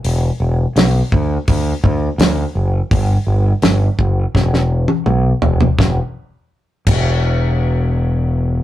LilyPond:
<<
  \new Staff \with { instrumentName = "Fingered electric bass" } { \clef bass \time 4/4 \key e \minor \tempo 4 = 83 e,,8 e,,8 b,,8 d,8 d,8 d,8 d,8 fis,,8 | g,,8 g,,8 g,,8 fis,,8 e,,4 b,,8 e,,8 | e,,8 r4 e,,2~ e,,8 | }
  \new DrumStaff \with { instrumentName = "Drums" } \drummode { \time 4/4 hho4 <hho sn>8 bd8 <hho bd>8 bd8 <hho sn>4 | <hho bd>4 <hho sn>8 bd8 <bd sn>16 sn8 tommh16 toml8 tomfh16 tomfh16 | <bd sn>4 r8 <cymc bd>8 r4 r4 | }
>>